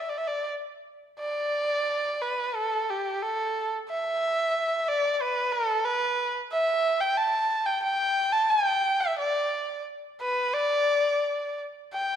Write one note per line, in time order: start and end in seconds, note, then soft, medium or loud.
0.00 0.10 E5 medium
0.09 0.19 D5 medium
0.18 0.29 E5 medium
0.27 0.48 D5 medium
1.19 2.23 D5 medium
2.22 2.56 B4 medium
2.55 2.92 A4 medium
2.90 3.24 G4 medium
3.22 3.71 A4 medium
3.89 4.90 E5 medium
4.88 5.14 D5 medium
5.14 5.23 D5 medium
5.22 5.54 B4 medium
5.52 5.87 A4 medium
5.85 6.35 B4 medium
6.52 7.02 E5 loud
7.01 7.19 G5 medium
7.18 7.67 A5 medium
7.65 7.82 G5 medium
7.83 8.34 G5 medium
8.33 8.51 A5 medium
8.50 9.02 G5 medium
9.00 9.18 E5 medium
9.18 9.82 D5 medium
10.21 10.55 B4 medium
10.54 11.60 D5 medium
11.93 12.16 G5 medium